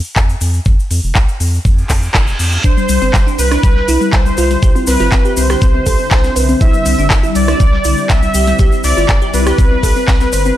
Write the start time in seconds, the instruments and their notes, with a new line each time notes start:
0.04 shaker
0.16 analog synth bass F2, kick, clap, shaker
0.29 shaker
0.41 analog synth bass F2, open hi-hat, shaker
0.54 shaker
0.65 analog synth bass F2, kick, shaker
0.80 shaker
0.91 analog synth bass F2, open hi-hat, shaker
1.04 analog synth bass F1, shaker
1.15 analog synth bass C2, kick, clap, shaker
1.29 shaker
1.40 analog synth bass F2, open hi-hat, shaker
1.54 shaker
1.65 analog synth bass F2, kick, reverse cymbal, shaker
1.78 shaker
1.89 analog synth bass F2, kick, clap, open hi-hat, shaker
2.03 shaker
2.14 analog synth bass F1, kick, clap, shaker
2.27 shaker
2.39 analog synth bass F2, open hi-hat, shaker
2.52 shaker
2.64 analog synth bass C2, ambient pad D3 G3 C4 E4, synth arpeggio sound D4, supersaw synth C5, kick, shaker
2.77 synth arpeggio sound G3, shaker
2.89 analog synth bass C2, synth arpeggio sound G3, open hi-hat, shaker
3.02 analog synth bass G1, synth arpeggio sound C4, shaker
3.13 analog synth bass G1, synth arpeggio sound G3, kick, snare, clap, shaker
3.27 synth arpeggio sound D4, shaker
3.39 analog synth bass C2, synth arpeggio sound G3, supersaw synth B4, open hi-hat, shaker
3.51 synth arpeggio sound D4, cross-stick, snare, shaker
3.63 analog synth bass C2, synth arpeggio sound G3, kick, shaker
3.76 synth arpeggio sound G3, snare
3.88 analog synth bass C2, synth arpeggio sound E4, open hi-hat, shaker
4.01 synth arpeggio sound G3, shaker
4.13 analog synth bass C2, supersaw synth C5, kick, snare, clap, shaker
4.26 synth arpeggio sound G3, shaker
4.37 analog synth bass C2, synth arpeggio sound F4, open hi-hat, shaker
4.50 synth arpeggio sound G3, closed hi-hat, shaker
4.63 analog synth bass C2, synth arpeggio sound G4, kick, shaker
4.76 synth arpeggio sound C4, shaker
4.87 analog synth bass C2, synth arpeggio sound C4, supersaw synth B4, snare, open hi-hat, shaker
4.99 analog synth bass G1, synth arpeggio sound F4, snare, shaker
5.12 analog synth bass G1, synth arpeggio sound C4, kick, snare, clap, shaker
5.25 synth arpeggio sound G4, shaker
5.37 analog synth bass C2, synth arpeggio sound C4, supersaw synth C5, open hi-hat, shaker
5.50 synth arpeggio sound G4, cross-stick, snare, shaker
5.62 analog synth bass C2, synth arpeggio sound C4, kick, shaker
5.75 synth arpeggio sound C4
5.86 analog synth bass C2, synth arpeggio sound A4, kick, open hi-hat, shaker
5.98 synth arpeggio sound C4, shaker
6.11 analog synth bass C2, synth arpeggio sound C4, kick, snare, clap, open hi-hat, shaker
6.24 synth arpeggio sound C4, snare, shaker
6.36 analog synth bass C2, synth arpeggio sound B4, open hi-hat, shaker
6.49 synth arpeggio sound C4, shaker
6.61 analog synth bass C2, synth arpeggio sound E4, supersaw synth E5, kick, shaker
6.74 synth arpeggio sound G3, shaker
6.86 analog synth bass C2, synth arpeggio sound G3, open hi-hat, shaker
6.99 analog synth bass G1, synth arpeggio sound D4, shaker
7.10 analog synth bass G1, synth arpeggio sound G3, kick, snare, clap, shaker
7.23 synth arpeggio sound E4, shaker
7.35 analog synth bass C2, synth arpeggio sound G3, supersaw synth D5, open hi-hat, shaker
7.48 synth arpeggio sound E4, cross-stick, snare, shaker
7.60 analog synth bass C2, synth arpeggio sound G3, kick, shaker
7.73 synth arpeggio sound G3, snare
7.84 analog synth bass C2, synth arpeggio sound E4, open hi-hat, shaker
7.97 synth arpeggio sound G3, shaker
8.09 analog synth bass C2, supersaw synth E5, kick, snare, clap, shaker
8.23 synth arpeggio sound G3, shaker
8.34 analog synth bass C2, synth arpeggio sound G4, open hi-hat, shaker
8.47 synth arpeggio sound G3, closed hi-hat, shaker
8.59 analog synth bass C2, synth arpeggio sound G4, kick, shaker
8.72 synth arpeggio sound C4, shaker
8.84 analog synth bass C2, synth arpeggio sound C4, supersaw synth D5, snare, open hi-hat, shaker
8.97 analog synth bass G1, synth arpeggio sound F4, snare, shaker
9.09 analog synth bass G1, synth arpeggio sound C4, kick, snare, clap, shaker
9.22 synth arpeggio sound G4, shaker
9.34 analog synth bass C2, synth arpeggio sound C4, supersaw synth B4, open hi-hat, shaker
9.46 synth arpeggio sound G4, cross-stick, snare, shaker
9.58 analog synth bass C2, synth arpeggio sound C4, kick, shaker
9.71 synth arpeggio sound C4
9.83 analog synth bass C2, synth arpeggio sound A4, kick, open hi-hat, shaker
9.96 synth arpeggio sound C4, shaker
10.08 analog synth bass C2, synth arpeggio sound C4, kick, snare, clap, open hi-hat, shaker
10.21 synth arpeggio sound C4, snare, shaker
10.32 analog synth bass G1, synth arpeggio sound C5, open hi-hat, shaker
10.45 synth arpeggio sound C4, shaker